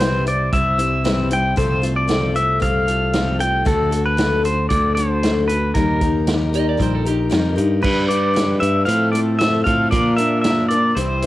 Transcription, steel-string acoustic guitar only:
0.00 0.26 C3 medium
0.00 0.26 E3 medium
0.00 0.26 G3 medium
0.00 0.26 C4 medium
0.00 0.26 E4 medium
0.00 0.25 C5 medium
0.26 0.51 G3 soft
0.26 0.53 C4 soft
0.26 0.53 E4 soft
0.26 0.53 C5 soft
0.52 0.79 G3 medium
0.52 0.78 C4 medium
0.52 0.77 E4 soft
0.52 0.77 C5 medium
0.78 1.03 G3 soft
0.78 1.04 C4 soft
0.78 1.04 E4 soft
0.78 1.04 C5 soft
1.04 1.31 C3 medium
1.04 1.31 E3 medium
1.04 1.31 G3 medium
1.04 1.31 C4 medium
1.04 1.30 E4 medium
1.04 1.29 C5 medium
1.30 1.56 G3 soft
1.30 1.56 C4 soft
1.30 1.57 E4 soft
1.30 1.57 C5 soft
1.56 1.83 C3 medium
1.56 1.83 F3 medium
1.56 1.82 A3 medium
1.56 1.82 C4 medium
1.56 1.81 F4 medium
1.56 1.80 A4 medium
1.82 2.07 A3 soft
1.82 2.08 C4 soft
1.82 2.07 F4 soft
1.82 2.08 A4 soft
2.08 2.35 C3 medium
2.08 2.35 F3 medium
2.08 2.36 A3 medium
2.08 2.35 C4 medium
2.08 2.34 F4 medium
2.08 2.33 A4 medium
2.34 2.58 A3 soft
2.34 2.59 C4 soft
2.34 2.60 F4 soft
2.34 2.61 A4 soft
2.60 2.87 A3 medium
2.60 2.87 C4 medium
2.60 2.87 F4 medium
2.60 2.86 A4 medium
2.87 3.13 A3 soft
2.87 3.13 C4 soft
2.87 3.14 F4 soft
2.87 3.13 A4 soft
3.13 3.40 C3 medium
3.13 3.40 F3 medium
3.13 3.40 A3 medium
3.13 3.39 C4 medium
3.13 3.38 F4 medium
3.13 3.38 A4 medium
3.39 3.65 A3 soft
3.39 3.65 C4 soft
3.39 3.65 F4 soft
3.39 3.65 A4 medium
3.65 3.92 D3 medium
3.65 3.93 A3 medium
3.65 3.91 D4 medium
3.65 3.91 F#4 medium
3.65 3.90 A4 medium
3.91 4.17 D4 soft
3.91 4.17 F#4 soft
3.91 4.18 A4 soft
4.17 4.44 D3 medium
4.17 4.45 A3 medium
4.17 4.45 D4 medium
4.17 4.44 F#4 medium
4.17 4.43 A4 medium
4.44 4.69 D4 soft
4.44 4.71 F#4 soft
4.44 4.71 A4 soft
4.70 4.97 A3 medium
4.70 4.97 D4 medium
4.70 4.97 F#4 medium
4.70 4.96 A4 medium
4.97 5.23 D4 soft
4.97 5.23 F#4 soft
4.97 5.23 A4 medium
5.24 5.50 D3 medium
5.24 5.50 A3 medium
5.24 5.49 D4 medium
5.24 5.49 F#4 medium
5.24 5.47 A4 medium
5.49 5.76 D4 soft
5.49 5.76 F#4 soft
5.49 5.75 A4 medium
5.76 6.02 D#3 medium
5.76 6.02 G3 medium
5.76 6.01 D#4 medium
5.76 6.01 G4 medium
5.76 6.00 A#4 medium
6.01 6.26 D#4 soft
6.01 6.27 G4 soft
6.01 6.27 A#4 soft
6.27 6.54 D#3 medium
6.27 6.54 G3 medium
6.27 6.54 D#4 medium
6.27 6.53 G4 medium
6.27 6.52 A#4 medium
6.53 6.77 D#4 soft
6.53 6.78 G4 medium
6.53 6.79 A#4 soft
6.77 7.05 G3 medium
6.77 7.05 D#4 medium
6.77 7.05 G4 medium
6.77 7.04 A#4 medium
7.05 7.30 D#4 soft
7.05 7.30 G4 medium
7.05 7.30 A#4 medium
7.30 7.57 D#3 medium
7.30 7.58 G3 medium
7.30 7.57 D#4 medium
7.30 7.56 G4 medium
7.30 7.55 A#4 medium
7.56 7.83 D#4 medium
7.56 7.82 G4 soft
7.56 7.83 A#4 medium
7.82 8.09 G3 medium
7.82 8.09 D4 medium
7.82 8.08 G4 medium
7.82 8.07 B4 medium
8.08 8.33 D4 soft
8.08 8.34 G4 soft
8.08 8.35 B4 medium
8.34 8.61 G3 medium
8.34 8.61 D4 medium
8.34 8.60 G4 medium
8.34 8.59 B4 medium
8.60 8.86 D4 soft
8.60 8.86 G4 soft
8.60 8.86 B4 soft
8.85 9.13 A2 medium
8.85 9.13 F3 medium
8.85 9.14 A3 medium
8.85 9.13 C4 medium
8.85 9.13 F4 medium
8.85 9.12 A4 medium
9.13 9.38 A3 soft
9.13 9.38 C4 soft
9.13 9.39 F4 soft
9.13 9.39 A4 medium
9.39 9.66 A3 medium
9.39 9.65 C4 medium
9.39 9.64 F4 medium
9.39 9.64 A4 medium
9.65 9.92 A3 soft
9.65 9.92 C4 soft
9.65 9.91 F4 medium
9.65 9.92 A4 medium
9.91 10.18 A#2 medium
9.91 10.18 F3 medium
9.91 10.19 A#3 medium
9.91 10.18 D4 medium
9.91 10.17 F4 medium
9.91 10.16 A#4 medium
10.17 10.43 A#3 soft
10.17 10.44 D4 soft
10.17 10.45 F4 soft
10.17 10.44 A#4 soft
10.44 10.71 A#3 medium
10.44 10.70 D4 medium
10.44 10.70 F4 medium
10.44 10.69 A#4 medium
10.70 10.97 A#3 soft
10.70 10.96 D4 soft
10.70 10.97 F4 soft
10.70 10.97 A#4 soft
10.97 11.23 C3 medium
10.97 11.23 E3 medium
10.97 11.23 G3 medium
10.97 11.23 C4 medium
10.97 11.23 E4 medium
10.97 11.22 C5 medium

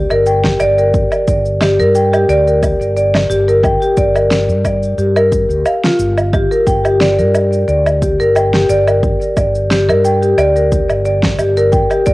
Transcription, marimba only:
0.11 0.25 A#4 loud
0.27 0.44 G5 loud
0.44 0.59 G4 medium
0.60 0.77 D5 loud
0.78 0.87 A#4 medium
1.28 1.60 D5 medium
1.61 1.72 G4 medium
1.80 1.94 A#4 loud
1.95 2.12 G5 loud
2.13 2.28 G4 medium
2.29 2.45 D5 loud
2.48 2.56 A#4 medium
2.97 3.29 D5 medium
3.30 3.40 G4 medium
3.48 3.62 A#4 loud
3.63 3.81 G5 loud
3.82 3.97 G4 medium
3.97 4.14 D5 loud
4.15 4.24 A#4 medium
4.65 4.97 D5 medium
4.98 5.09 G4 medium
5.16 5.30 A#4 loud
5.32 5.49 A#4 medium
5.65 5.83 F5 medium
5.84 5.99 F4 medium
6.33 6.44 G4 medium
6.51 6.65 A#4 medium
6.67 6.84 G5 loud
6.85 7.00 G4 medium
7.00 7.17 D5 loud
7.19 7.28 A#4 medium
7.68 8.00 D5 medium
8.02 8.12 G4 medium
8.20 8.34 A#4 loud
8.35 8.53 G5 medium
8.54 8.69 G4 medium
8.69 8.86 D5 loud
8.87 8.96 A#4 medium
9.37 9.69 D5 medium
9.71 9.81 G4 medium
9.89 10.03 A#4 loud
10.04 10.22 G5 loud
10.23 10.37 G4 medium
10.38 10.54 D5 loud
10.56 10.65 A#4 medium
11.05 11.37 D5 medium
11.39 11.49 G4 medium
11.57 11.71 A#4 loud
11.72 11.90 G5 loud
11.90 12.05 G4 medium
12.06 12.14 D5 loud

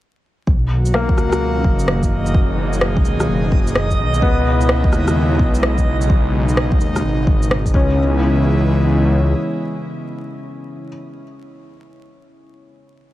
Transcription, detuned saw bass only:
0.47 1.17 B1 loud
1.18 1.64 C#2 medium
1.64 3.04 F#1 loud
3.05 3.27 C#2 medium
3.29 4.00 F#1 medium
3.99 4.21 B1 medium
4.22 4.92 C#2 loud
4.93 5.39 D#2 medium
5.39 6.79 B1 loud
6.81 7.03 D#2 medium
7.04 7.74 G#1 medium
7.74 9.34 C#2 loud

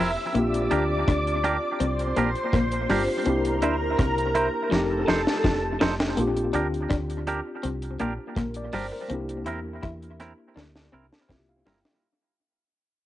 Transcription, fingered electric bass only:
0.00 0.15 F1 medium
0.35 0.67 A#1 loud
0.72 1.04 D2 loud
1.08 1.57 D2 medium
1.81 2.13 C2 loud
2.17 2.33 A#1 medium
2.53 2.85 A#1 loud
2.90 3.06 G1 medium
3.26 3.63 C2 loud
3.63 3.95 D2 medium
3.99 4.48 C2 medium
4.72 5.04 F1 loud
5.09 5.25 F1 medium
5.45 5.77 F1 medium
5.82 6.14 F1 medium
6.18 6.50 A#1 loud
6.54 6.86 D2 medium
6.91 7.40 D2 medium
7.65 7.97 C2 loud
8.01 8.17 A#1 medium
8.37 8.69 A#1 medium
8.74 8.90 G1 medium
9.10 9.47 C2 loud
9.47 9.79 E2 medium
9.83 10.32 E2 loud
10.56 10.89 D2 loud
10.93 11.10 C2 medium
11.30 11.62 C2 medium
11.66 11.83 G1 medium

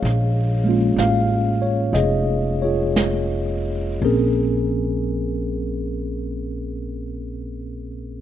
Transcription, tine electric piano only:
0.00 0.94 G#4 medium
0.00 1.62 C#5 medium
0.00 1.00 F5 medium
0.64 4.01 G#3 medium
0.64 4.01 A#3 soft
0.64 4.02 C#4 soft
0.69 2.63 F4 medium
1.00 1.58 F5 medium
1.62 1.91 C#5 medium
1.94 2.63 G#4 medium
1.94 2.56 D#5 medium
2.62 4.00 F4 soft
2.62 4.00 G#4 soft
2.62 3.62 C#5 medium
4.01 8.21 A#2 medium
4.01 8.21 A#3 soft
4.01 8.21 C4 medium
4.01 8.21 C#4 medium
4.01 8.21 G#4 medium
4.01 8.21 A#4 medium

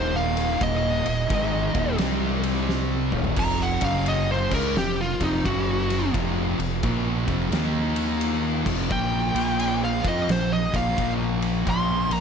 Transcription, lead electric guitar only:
0.00 0.15 C5 loud
0.16 0.60 F5 medium
0.63 1.96 D#5 loud
3.39 3.61 A#5 loud
3.63 3.84 F#5 loud
3.85 4.06 F5 loud
4.08 4.30 D#5 loud
4.32 4.53 C5 loud
4.53 4.75 A#4 loud
4.78 4.99 G4 loud
5.01 5.22 F4 loud
5.23 5.45 D#4 loud
5.45 6.12 F#4 loud
8.92 9.80 G5 loud
9.85 10.06 F5 medium
10.08 10.29 D#5 loud
10.32 10.52 C5 loud
10.53 10.74 D#5 loud
10.76 11.12 F5 loud
11.70 12.12 C6 loud
12.13 12.20 A#5 loud

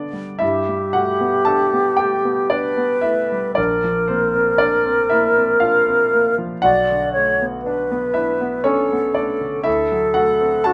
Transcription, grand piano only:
0.00 0.38 G2 soft
0.00 0.30 D3 soft
0.00 0.44 B3 soft
0.00 0.44 D4 soft
0.00 0.40 D5 medium
0.13 0.41 G3 soft
0.39 3.53 G2 medium
0.39 0.90 E4 medium
0.39 0.93 E5 medium
0.69 1.11 G3 soft
0.93 1.37 A3 soft
0.93 1.44 F#4 medium
0.93 1.46 F#5 medium
1.21 1.63 B3 soft
1.45 1.89 D4 soft
1.45 1.96 A4 medium
1.45 1.99 A5 medium
1.73 2.15 B3 soft
1.97 2.42 A3 soft
1.97 2.48 G4 medium
1.97 2.51 G5 medium
2.25 2.68 B3 soft
2.50 3.01 D4 medium
2.50 3.04 D5 medium
2.77 3.20 B3 soft
3.01 3.46 A3 soft
3.01 3.52 E4 medium
3.01 3.55 E5 medium
3.32 3.58 G3 soft
3.55 6.60 A#1 soft
3.55 4.05 D4 medium
3.55 4.08 D5 medium
3.84 4.25 F3 soft
4.08 4.51 A#3 soft
4.08 4.33 C4 soft
4.08 4.60 C5 medium
4.35 4.76 C4 soft
4.58 5.07 D4 medium
4.58 5.10 D5 medium
4.86 5.27 C4 soft
5.09 5.53 A#3 soft
5.09 5.58 E4 medium
5.09 5.61 E5 medium
5.37 5.78 C4 soft
5.60 6.03 D4 soft
5.60 6.09 F4 medium
5.60 6.12 F5 medium
5.88 6.29 C4 soft
6.14 6.54 A#3 soft
6.38 6.64 F3 soft
6.62 9.63 B1 medium
6.62 8.12 F#4 medium
6.62 8.15 F#5 medium
6.90 7.30 D3 soft
7.16 7.56 A3 soft
7.42 7.81 B3 soft
7.66 8.06 D4 soft
7.91 8.32 B3 soft
8.14 8.57 D4 soft
8.14 8.62 E4 medium
8.14 8.66 E5 medium
8.41 8.81 B3 soft
8.64 9.12 C#4 medium
8.64 9.06 D4 soft
8.64 9.15 C#5 medium
8.93 9.32 B3 soft
9.14 9.57 A3 soft
9.14 9.63 D4 soft
9.14 9.66 D5 medium
9.41 9.66 D3 soft
9.63 10.73 D2 soft
9.63 10.12 E4 medium
9.63 10.15 E5 medium
9.92 10.32 F#3 soft
10.14 10.56 A3 soft
10.14 10.61 F#4 medium
10.14 10.65 F#5 medium
10.41 10.73 C4 soft
10.64 10.73 D4 soft
10.64 10.73 A4 medium
10.64 10.73 A5 medium

